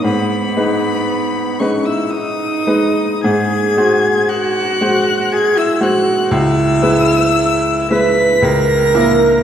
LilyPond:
<<
  \new Staff \with { instrumentName = "Violin" } { \time 3/4 \key gis \minor \tempo 4 = 58 b''4. cis'''16 e'''16 dis'''4 | gis'''4 fis'''4 gis'''16 e'''16 fis'''8 | e'''4. b'''8 ais'''4 | }
  \new Staff \with { instrumentName = "Cello" } { \time 3/4 \key gis \minor b4. cis'16 e'16 dis'4 | gis'4 fis'4 gis'16 e'16 fis'8 | e'4. b'8 ais'4 | }
  \new Staff \with { instrumentName = "Grand piano" } { \time 3/4 \key gis \minor gis,8 <gis dis' b'>4 <gis dis' b'>4 <gis dis' b'>8 | gis,8 <gis fis' bis'>4 <gis fis' bis'>4 <gis fis' bis'>8 | cis,8 <gis e' b'>4 <gis e' b'>8 cis,8 <ais e' ais'>8 | }
>>